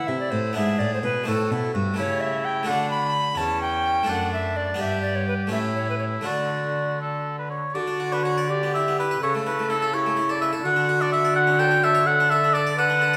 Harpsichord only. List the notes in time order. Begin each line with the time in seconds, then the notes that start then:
Already playing: A3 C4 E4
0.08 C3
0.32 A2
0.53 B3 D4 E4
0.58 G#2
0.81 A2
1.03 B2
1.24 A3 C4 E4
1.28 A2
1.52 B2
1.75 G2
1.94 A3 E4 G4
1.99 C#3
2.63 A3 D4 F#4
2.68 D3
3.35 E2 C#4 E4
4.03 A3 D4 A4
4.08 F#2
4.74 B3 D4 G4
4.79 G2
5.47 A3 C#4 G4
5.52 A2
6.21 A3 D4 F#4
6.26 D3
7.75 D3
7.87 D4
8.00 F#4
8.12 D4
8.25 F#4
8.38 D5
8.63 B3
8.76 E4
8.88 B3
9.00 E4
9.11 B4
9.23 C#3
9.35 A3
9.47 E4
9.59 A3
9.70 E4
9.82 A4
9.94 G4
10.06 A3
10.17 E4
10.29 A4
10.42 B4
10.53 A4
10.65 D3
10.76 D4
10.89 F#4
11.01 D4
11.14 F#4
11.25 D5
11.47 C#4
11.59 A4
11.71 C#4
11.84 A4
11.95 C#5
12.20 D4
12.32 A4
12.44 D4
12.55 A4
12.67 D5
12.79 A4
12.90 D4
13.02 A4
13.14 D5